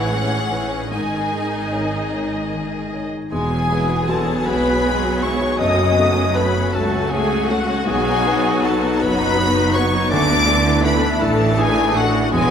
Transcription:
Already playing: A1 C#2 A2 E3 G#3 E4 G#4 C#5 F#5
0.12 G#3 C#4
0.52 C#4 E4 C#5
0.91 G#1 G#2 D#3 D#4 G#4 D#5 G#5
1.32 G#3
1.72 D#4 C#5
2.13 D#4 C#5
2.54 D#3
2.94 D#4 C#5
3.31 E1 E2 F#3 G#3 B3 F#4 G#4 G#5
3.51 B3
3.71 G#3 E4 F#4 B4
3.90 B3
4.08 F#3 G#3 F#4 A4 B4 A5
4.28 B3
4.45 B1 B2 G#3 E4 F#4 B4 B5
4.67 B3
4.86 G#3 F#4 B4
5.03 B3
5.22 G#3 E4 F#4 B4 C#5 C#6
5.42 B3
5.58 F#1 F#2 A3 D#5 D#6
5.78 C#4
5.98 A3 C#4 F#4
6.17 C#4
6.34 A3 C#4 F#4 B4 B5
6.56 C#4
6.73 C#2 A3 C#4 F#4 A4 A5
6.94 C#4
7.10 A3 C#4 F#4 G#4 G#5
7.31 C#4
7.49 A3 C#4 F#4 A4 F#5
7.69 C#4
7.86 B1 B2 F#3 B3 D#4 G#4 G#5
8.08 D#4
8.26 B3 D#4 F#4 B4
8.45 D#4
8.62 B3 D#4 F#4 A4 B4 A5
8.81 D#4
9.00 F#1 F#2 B3 D#4 F#4 B4 B5
9.20 D#4
9.38 B3 D#4 F#4 B4
9.57 D#4
9.73 B3 D#4 F#4 B4 C#5 C#6
9.93 D#4
10.10 D2 D3 E3 A3 D4 E4 D5 D6
10.28 D4
10.48 A3 D4 E4 A4
10.65 D4
10.83 A3 D4 E4 A4 B4 B5
11.03 D4
11.20 A1 A2 A3 D4 E4 A4 A5
11.40 D4
11.57 A3 D4 E4 G#4 G#5
11.76 D4
11.95 A3 D4 E4 F#4 A4 F#5
12.14 D4
12.31 E1 E2 F#3 G#3 B3 F#4 G#4 G#5

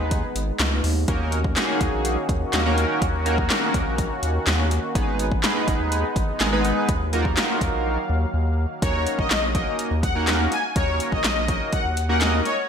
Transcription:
Already playing: G#3 B3 D#4 G#4 B4
0.00 D#2
0.11 kick, closed hi-hat
0.35 G#1, closed hi-hat
0.59 C#2, snare, clap, closed hi-hat
0.84 D#2, open hi-hat
1.08 D#2 D#3 A#3 C#4 D#4 F#4 A#4, kick, closed hi-hat
1.32 closed hi-hat
1.44 kick
1.56 A#3 C#4 D#4 F#4 G#4, snare, clap, closed hi-hat
1.81 D#2, kick, closed hi-hat
1.93 A#1
2.05 closed hi-hat
2.29 D#2, kick, closed hi-hat
2.53 D#2 A#3 C#4 D#4 F#4 A#4, snare, clap, closed hi-hat
2.65 A#3 C#4 D#4 F#4 A#4
2.78 closed hi-hat
3.02 D#2, kick, closed hi-hat
3.26 A#3 C#4 D#4 F#4 A#4, closed hi-hat
3.38 kick
3.50 A#3 C#4 D#4 F#4 A#4, snare, clap, closed hi-hat
3.74 D#2, kick, closed hi-hat
3.86 A#1
3.98 kick, closed hi-hat
4.23 D#2, closed hi-hat
4.47 D#2, snare, clap, closed hi-hat
4.71 closed hi-hat
4.95 G#1 G#3 B3 D#4 G#4 B4, kick, closed hi-hat
5.19 closed hi-hat
5.32 kick
5.43 G#3 B3 D#4 G#4 B4, snare, clap, closed hi-hat
5.68 G#1, kick, closed hi-hat
5.80 D#2
5.92 closed hi-hat
6.16 G#1, kick, closed hi-hat
6.40 G#1 G#3 B3 D#4 G#4 A#4, snare, clap, closed hi-hat
6.52 G#3 B3 D#4 G#4 B4
6.65 closed hi-hat
6.89 D#2 D#3 F#3 A#3 F5, kick, closed hi-hat
7.13 A#3 D#4 F4 F#4 A#4, closed hi-hat
7.25 kick
7.37 A#3 D#4 F4 F#4 A#4, snare, clap, closed hi-hat
7.61 D#2, kick, closed hi-hat
7.73 A#1
8.10 D#2
8.34 D#2
8.82 D#2 A#3 C#4 D#4 F#4 A#4 C#5, kick, closed hi-hat
9.07 closed hi-hat
9.19 A#1 D#5, kick
9.31 D#5, snare, clap, closed hi-hat
9.55 A#3 C#4 D#4 F#4 A#4 D#5, kick, closed hi-hat
9.79 closed hi-hat
9.91 D#2
10.03 F#5, kick, closed hi-hat
10.15 A#3 C#4 D#4 F#4 A#4
10.27 snare, clap, closed hi-hat
10.52 G#5, closed hi-hat
10.76 D#2 A#3 C#4 D#4 F#4 A#4 C#5, kick, closed hi-hat
11.00 closed hi-hat
11.12 A#1 D#5, kick
11.24 D#5, snare, clap, closed hi-hat
11.48 A#3 C#4 D#4 F#4 A#4 D#5, kick, closed hi-hat
11.73 F#5, kick, closed hi-hat
11.85 D#2
11.97 closed hi-hat
12.09 A#3 C#4 D#4 F#4 A#4 F#5
12.21 D#5, snare, clap, closed hi-hat
12.45 C#5, closed hi-hat

